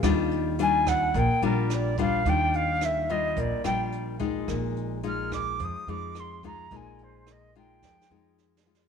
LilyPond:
<<
  \new Staff \with { instrumentName = "Flute" } { \time 4/4 \key ees \major \tempo 4 = 108 r4 aes''8 ges''8 g''8 bes'8 d''8 f''8 | g''8 f''8 fes''8 ees''8 d''8 g''8 r4 | r4 f'''8 d'''8 ees'''8 d'''8 c'''8 bes''8 | aes''8 c''8 ees''8 g''4. r4 | }
  \new Staff \with { instrumentName = "Nylon-string guitar" } { \time 4/4 \key ees \major << { <g d' f'>4 <g d' f'>4 r8 <g d' f'>4 <g d' f'>8 | <g d' f'>4. <g d' f'>4 <g d' f'>4 <aes ees' f'>8~ | <aes ees' f'>4 <aes ees' f'>4. <aes ees' f'>4 <aes ees' f'>8 | <aes ees' f'>4. <aes ees' f'>4 <aes ees' f'>4 <aes ees' f'>8 | } \\ { ees2 bes,2 | ees2 bes,2 | bes,2 f2 | bes,2 f2 | } >> }
  \new Staff \with { instrumentName = "Upright bass" } { \clef bass \time 4/4 \key ees \major ees,2 bes,,16 r16 bes,,4. | ees,2 bes,,16 r16 bes,,4. | bes,,2 f,16 r16 f,4. | bes,,2 f,16 r16 f,4. | }
  \new DrumStaff \with { instrumentName = "Drums" } \drummode { \time 4/4 <hh bd ss>8 hh8 hh8 <hh bd ss>8 <hh bd>8 hh8 <hh ss>8 <hh bd>8 | <hh bd>8 hh8 <hh ss>8 hh8 <hh bd>8 <hh ss>8 hh8 <hh bd>8 | <hh bd ss>8 hh8 hh8 <hh bd ss>8 <hh bd>8 hh8 <hh ss>8 <hh bd>8 | <hh bd>8 hh8 <hh ss>8 hh8 \tuplet 3/2 { <bd sn>8 sn8 r8 sn8 sn8 sn8 } | }
>>